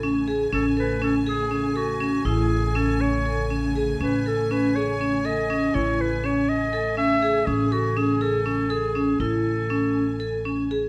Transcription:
Already playing: A1 C#3 A3 G#5
0.03 C#4
0.28 G#4
0.52 A1 C#4 A4
0.77 A4 B4
1.02 C#4 A4
1.27 G#4
1.51 C#4
1.76 F#4 A4
2.00 C#4
2.25 A1 E4 G#4
2.75 C#4 A4
3.01 C#5
3.26 A4
3.50 C#4
3.76 G#4
4.00 A1 C#4 B4
4.26 A4
4.51 C#4 B4
4.76 G#4 C#5
5.01 C#4
5.25 A4 D#5
5.50 C#4
5.74 A1 E4 C#5
6.01 B4
6.24 C#4 C#5
6.49 D#5
6.73 A4
6.97 C#4 E5
7.22 G#4
7.46 A1 C#4 G#4
7.72 F#4 A4
7.97 C#4 G#4
8.21 G#4 A4
8.46 C#4
8.70 G#4 A4
8.95 C#4
9.20 A1 E4 A4
9.70 C#4
10.20 A4
10.45 C#4
10.71 G#4

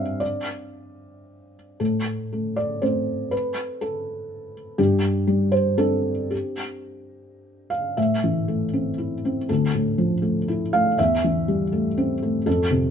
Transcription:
Already playing: G2 G3 C4 D4 C5 E5 F5
0.20 D5
1.80 A2 A4
2.33 A3
2.56 D5
2.82 A3 C4 C5
3.31 B4
3.81 A4
4.78 G2 G4
5.27 G3
5.52 C5
5.78 C4 D4 A4
6.31 G4
7.70 F5
7.97 A2 E5
8.24 E3
8.48 A3
8.73 C4
8.98 E4
9.25 C4
9.49 D2 A4
9.75 A2
9.98 F3
10.22 A3
10.48 E4
10.73 A3 F5
10.99 E2 E5
11.24 E3
11.48 G3
11.72 A3
11.98 C4
12.23 A3
12.46 F2 A4
12.71 C3

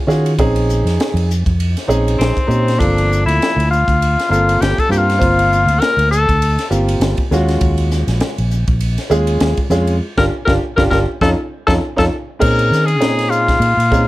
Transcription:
0.07 D#3 C#4 F4 F#4 G#4, snare, hi-hat pedal
0.26 ride
0.38 A#1 C4 C#4 D#4 G#4, kick, ride
0.56 ride
0.69 hi-hat pedal
0.85 F2, snare, ride
1.00 snare, ride
1.14 F2, ride
1.31 hi-hat pedal
1.46 F2, kick, ride
1.60 ride
1.77 snare, ride
1.88 A#1 C4 C#4 D#4 G#4, hi-hat pedal
2.08 ride
2.18 A#1 C4, snare, ride
2.37 kick, ride
2.47 A#2 C4 C#4 D#4 G4, hi-hat pedal
2.68 snare, ride
2.77 G1 F3 A#3 C4 D4 A4, kick
2.82 ride
2.98 ride
3.12 hi-hat pedal
3.26 D2 E4, ride
3.42 snare, ride
3.57 D2, ride
3.71 F4, hi-hat pedal
3.88 D2, kick, ride
4.02 ride
4.19 snare, ride
4.29 G1 A#3 C4 F4 A4, hi-hat pedal
4.49 ride
4.61 G1 G4, snare, ride
4.78 A4, kick, ride
4.89 G2 A#3 C4 F4 G4, hi-hat pedal
4.98 F4
5.10 snare, ride
5.18 G1 A#3 C4 F4 C5, kick
5.22 ride
5.39 ride
5.52 hi-hat pedal
5.66 D2, ride
5.80 A#4, snare, ride
5.97 D2, ride
6.11 A4, hi-hat pedal
6.29 D2, kick, ride
6.42 ride
6.59 snare, ride
6.70 G1 A#3 C4 F4 G4, hi-hat pedal
6.88 ride
7.00 G1, snare, ride
7.17 muted fingered electric bass stroke, kick, ride
7.31 D#2 G#3 C#4 F4 F#4, snare, hi-hat pedal
7.48 snare, ride
7.61 D#2, kick, ride
7.78 ride
7.91 snare, hi-hat pedal
8.08 A#1, snare, ride
8.20 snare, ride
8.38 A#1, ride
8.51 hi-hat pedal
8.67 A#1, kick, ride
8.81 ride
8.98 snare, ride
9.10 D#2 G#3 C#4 F4 G#4, hi-hat pedal
9.27 ride
9.40 D#2, snare, ride
9.57 muted fingered electric bass stroke, kick, ride
9.70 F2 G#3 C#4 F4 G#4, snare, hi-hat pedal
9.87 ride
10.17 G1 D4 F4 G4 A#4, kick, snare
10.45 G1 D4 F4 G4 A#4, kick, snare
10.76 G1 D4 F4 G4 A#4, kick, snare
10.90 G1 D4 F4 G4 A#4, kick, snare
11.21 F2 C#4 D#4 F4 A4, kick, snare
11.67 F2 C#4 D#4 F4 A4, kick, snare
11.96 F2 C#4 D#4 F4 A4, kick, snare
12.39 A#2 C4 C#4 D#4 G#4 A#4, kick, crash
12.59 ride
12.71 D#3, snare, hi-hat pedal
12.86 G#4, ride
13.00 A#2 C4 C#4 D#4 G#4, snare, ride
13.19 snare, ride
13.30 F4, hi-hat pedal
13.48 kick, snare, ride
13.60 A#2, ride
13.77 A#2, ride
13.91 C4 C#4 D#4 G#4, kick, hi-hat pedal

